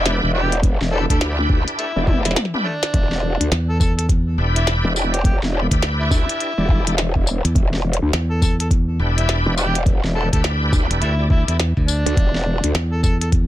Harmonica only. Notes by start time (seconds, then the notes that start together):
Already playing: E4
0.34 G4
0.92 A4
1.10 A4
1.79 A3 E4
2.07 E4
2.26 E4
2.65 A3 D4
3.69 A4
3.80 A4
3.98 A4
4.56 E4
5.13 G4
5.25 G4
6.00 E4
6.11 A3 E4
8.31 A4
8.43 A4
8.60 A4
9.18 E4
9.58 G4
10.16 A4
10.33 A4
11.02 A3 E4
11.31 E4
11.49 E4
11.88 D4
12.92 A4
13.04 A4
13.21 A4